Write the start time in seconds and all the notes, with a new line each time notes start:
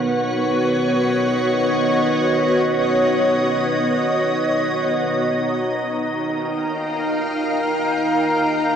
Already playing: D#3 B3 D#4 F#4 C#5
0.40 D#5
4.96 D#4
5.83 A#4
5.99 G5
6.17 F5